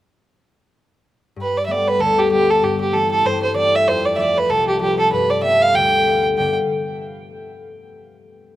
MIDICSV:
0, 0, Header, 1, 3, 480
1, 0, Start_track
1, 0, Tempo, 313480
1, 2093, Time_signature, 4, 2, 24, 8
1, 13107, End_track
2, 0, Start_track
2, 0, Title_t, "Fiddle"
2, 0, Program_c, 0, 110
2, 2160, Note_on_c, 0, 71, 62
2, 2405, Note_on_c, 0, 74, 69
2, 2428, Note_off_c, 0, 71, 0
2, 2529, Note_off_c, 0, 74, 0
2, 2538, Note_on_c, 0, 76, 50
2, 2621, Note_on_c, 0, 74, 61
2, 2644, Note_off_c, 0, 76, 0
2, 2876, Note_on_c, 0, 71, 72
2, 2899, Note_off_c, 0, 74, 0
2, 3073, Note_on_c, 0, 69, 80
2, 3095, Note_off_c, 0, 71, 0
2, 3347, Note_on_c, 0, 67, 70
2, 3370, Note_off_c, 0, 69, 0
2, 3538, Note_off_c, 0, 67, 0
2, 3546, Note_on_c, 0, 67, 82
2, 3830, Note_on_c, 0, 69, 74
2, 3853, Note_off_c, 0, 67, 0
2, 4036, Note_on_c, 0, 67, 70
2, 4059, Note_off_c, 0, 69, 0
2, 4289, Note_off_c, 0, 67, 0
2, 4298, Note_on_c, 0, 67, 64
2, 4492, Note_on_c, 0, 69, 71
2, 4515, Note_off_c, 0, 67, 0
2, 4757, Note_off_c, 0, 69, 0
2, 4767, Note_on_c, 0, 69, 78
2, 4988, Note_on_c, 0, 72, 76
2, 5011, Note_off_c, 0, 69, 0
2, 5238, Note_off_c, 0, 72, 0
2, 5247, Note_on_c, 0, 72, 63
2, 5432, Note_off_c, 0, 72, 0
2, 5452, Note_on_c, 0, 74, 83
2, 5744, Note_on_c, 0, 76, 77
2, 5767, Note_off_c, 0, 74, 0
2, 5939, Note_on_c, 0, 72, 84
2, 5962, Note_off_c, 0, 76, 0
2, 6204, Note_on_c, 0, 74, 65
2, 6227, Note_off_c, 0, 72, 0
2, 6353, Note_off_c, 0, 74, 0
2, 6361, Note_on_c, 0, 76, 56
2, 6408, Note_on_c, 0, 74, 68
2, 6431, Note_off_c, 0, 76, 0
2, 6697, Note_on_c, 0, 71, 76
2, 6720, Note_off_c, 0, 74, 0
2, 6889, Note_on_c, 0, 69, 83
2, 6912, Note_off_c, 0, 71, 0
2, 7157, Note_off_c, 0, 69, 0
2, 7167, Note_on_c, 0, 67, 63
2, 7354, Note_off_c, 0, 67, 0
2, 7366, Note_on_c, 0, 67, 77
2, 7618, Note_off_c, 0, 67, 0
2, 7645, Note_on_c, 0, 69, 76
2, 7834, Note_off_c, 0, 69, 0
2, 7844, Note_on_c, 0, 71, 72
2, 8109, Note_on_c, 0, 74, 67
2, 8132, Note_off_c, 0, 71, 0
2, 8302, Note_off_c, 0, 74, 0
2, 8311, Note_on_c, 0, 76, 82
2, 8602, Note_on_c, 0, 77, 90
2, 8625, Note_off_c, 0, 76, 0
2, 8808, Note_on_c, 0, 79, 89
2, 8831, Note_off_c, 0, 77, 0
2, 9565, Note_off_c, 0, 79, 0
2, 9765, Note_on_c, 0, 79, 59
2, 10024, Note_off_c, 0, 79, 0
2, 13107, End_track
3, 0, Start_track
3, 0, Title_t, "Harp"
3, 0, Program_c, 1, 46
3, 2087, Note_on_c, 1, 43, 52
3, 2564, Note_on_c, 1, 55, 45
3, 2574, Note_on_c, 1, 57, 39
3, 2583, Note_on_c, 1, 59, 47
3, 3046, Note_on_c, 1, 38, 67
3, 3123, Note_off_c, 1, 43, 0
3, 3513, Note_off_c, 1, 55, 0
3, 3532, Note_off_c, 1, 57, 0
3, 3532, Note_on_c, 1, 55, 40
3, 3538, Note_on_c, 1, 57, 40
3, 3546, Note_off_c, 1, 59, 0
3, 3552, Note_on_c, 1, 59, 48
3, 4008, Note_on_c, 1, 43, 59
3, 4077, Note_off_c, 1, 38, 0
3, 4077, Note_off_c, 1, 55, 0
3, 4460, Note_off_c, 1, 57, 0
3, 4461, Note_on_c, 1, 52, 40
3, 4466, Note_on_c, 1, 57, 40
3, 4476, Note_on_c, 1, 60, 46
3, 4567, Note_off_c, 1, 59, 0
3, 4954, Note_off_c, 1, 43, 0
3, 4972, Note_on_c, 1, 43, 58
3, 5409, Note_off_c, 1, 52, 0
3, 5427, Note_on_c, 1, 52, 40
3, 5433, Note_off_c, 1, 57, 0
3, 5439, Note_off_c, 1, 60, 0
3, 5439, Note_on_c, 1, 57, 38
3, 5445, Note_on_c, 1, 60, 51
3, 5937, Note_on_c, 1, 41, 49
3, 5993, Note_off_c, 1, 43, 0
3, 5993, Note_off_c, 1, 52, 0
3, 6390, Note_on_c, 1, 53, 48
3, 6393, Note_off_c, 1, 57, 0
3, 6399, Note_on_c, 1, 57, 40
3, 6405, Note_off_c, 1, 60, 0
3, 6411, Note_on_c, 1, 60, 42
3, 6884, Note_on_c, 1, 36, 71
3, 6955, Note_off_c, 1, 41, 0
3, 7322, Note_off_c, 1, 53, 0
3, 7341, Note_on_c, 1, 53, 45
3, 7342, Note_off_c, 1, 57, 0
3, 7348, Note_on_c, 1, 57, 46
3, 7349, Note_off_c, 1, 60, 0
3, 7355, Note_on_c, 1, 60, 46
3, 7840, Note_on_c, 1, 43, 59
3, 7919, Note_off_c, 1, 36, 0
3, 7919, Note_off_c, 1, 53, 0
3, 8311, Note_on_c, 1, 55, 42
3, 8317, Note_off_c, 1, 57, 0
3, 8323, Note_on_c, 1, 57, 33
3, 8332, Note_on_c, 1, 59, 46
3, 8424, Note_off_c, 1, 60, 0
3, 8711, Note_off_c, 1, 57, 0
3, 8716, Note_off_c, 1, 59, 0
3, 8785, Note_on_c, 1, 38, 62
3, 8885, Note_off_c, 1, 43, 0
3, 9264, Note_off_c, 1, 55, 0
3, 9282, Note_on_c, 1, 55, 47
3, 9295, Note_on_c, 1, 57, 38
3, 9301, Note_on_c, 1, 59, 49
3, 9680, Note_off_c, 1, 57, 0
3, 9684, Note_off_c, 1, 59, 0
3, 9762, Note_off_c, 1, 55, 0
3, 9764, Note_on_c, 1, 43, 43
3, 9775, Note_on_c, 1, 50, 45
3, 9783, Note_on_c, 1, 55, 45
3, 9788, Note_on_c, 1, 59, 45
3, 9797, Note_on_c, 1, 69, 41
3, 9801, Note_on_c, 1, 74, 48
3, 9851, Note_off_c, 1, 38, 0
3, 10024, Note_off_c, 1, 43, 0
3, 10031, Note_off_c, 1, 50, 0
3, 10032, Note_off_c, 1, 55, 0
3, 10038, Note_off_c, 1, 59, 0
3, 10040, Note_off_c, 1, 69, 0
3, 10043, Note_off_c, 1, 74, 0
3, 13107, End_track
0, 0, End_of_file